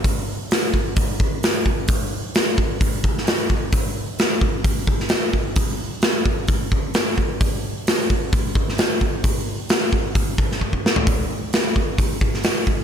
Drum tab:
HH |o---o---o---o---|o---o---o---o---|o---o---o---o---|o---o---o---o---|
SD |----o-------o---|----o------oo---|----o------oo---|----o-------o---|
FT |----------------|----------------|----------------|----------------|
BD |o-----o-o-o---o-|o-----o-o-o---o-|o-----o-o-o---o-|o-----o-o-o---o-|

HH |o---o---o---o---|o---o---o-------|o---o---o---o---|
SD |----o------oo---|----o------o--o-|----o------oo---|
FT |----------------|---------------o|----------------|
BD |o-----o-o-o---o-|o-----o-o-o-oo--|o-----o-o-o---o-|